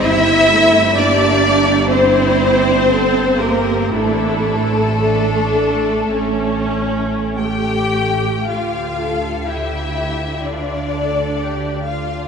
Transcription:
0.04 double bass section G1, viola section G3 E4, cello section E4, violin section E4 E5
0.52 viola section A3
0.97 viola section A#3 G4, violin section D4 D5, cello section D4
1.89 violin section C4 C5, cello section C4, viola section C4 E4
2.90 viola section A4
3.40 violin section A#3 A#4, cello section A#3, viola section G4
3.92 double bass section A1, cello section A3, violin section A3 A4, viola section D4 E4
5.01 viola section D4
6.11 double bass section A1, viola section C#4
7.37 viola section A3 G4, violin section G5
8.49 double bass section D2, cello section D3, violin section F4 F5, viola section F4
8.99 violin section A4
9.48 viola section E4, violin section G4 E5
10.45 viola section D4, violin section F4 D5
10.94 violin section A4
11.41 violin section G4
11.87 violin section F4 F5, viola section F4

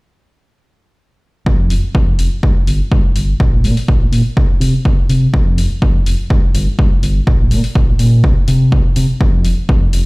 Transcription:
1.46 fingered electric bass F2, kick
1.70 fingered electric bass F1, open hi-hat
1.83 muted fingered electric bass stroke
1.95 fingered electric bass F2, kick
2.19 fingered electric bass F1, open hi-hat
2.43 fingered electric bass G2, kick
2.67 fingered electric bass G1, open hi-hat
2.80 muted fingered electric bass stroke
2.91 fingered electric bass G2, kick
3.15 fingered electric bass G1, open hi-hat
3.40 fingered electric bass A#1, kick
3.64 fingered electric bass A#2, open hi-hat
3.77 muted fingered electric bass stroke, open hi-hat
3.88 fingered electric bass A#1, kick
4.12 fingered electric bass A#2, open hi-hat
4.37 fingered electric bass C2, kick
4.60 fingered electric bass C3, open hi-hat
4.73 muted fingered electric bass stroke
4.85 fingered electric bass C2, kick
5.09 fingered electric bass C3, open hi-hat
5.33 fingered electric bass F2, kick
5.57 fingered electric bass F1, open hi-hat
5.70 muted fingered electric bass stroke
5.82 fingered electric bass F2, kick
6.06 fingered electric bass F1, open hi-hat
6.30 fingered electric bass G2, kick
6.54 fingered electric bass G1, open hi-hat
6.67 muted fingered electric bass stroke
6.79 fingered electric bass G2, kick
7.02 fingered electric bass G1, open hi-hat
7.27 fingered electric bass A#1, kick
7.51 fingered electric bass A#2, open hi-hat
7.64 muted fingered electric bass stroke, open hi-hat
7.75 fingered electric bass A#1, kick
7.99 fingered electric bass A#2, open hi-hat
8.24 fingered electric bass C2, kick
8.48 fingered electric bass C3, open hi-hat
8.72 fingered electric bass C2, kick
8.96 fingered electric bass C3, open hi-hat
9.20 fingered electric bass F2, kick
9.45 fingered electric bass F1, open hi-hat
9.58 muted fingered electric bass stroke
9.69 fingered electric bass F2, kick
9.93 fingered electric bass F1, open hi-hat

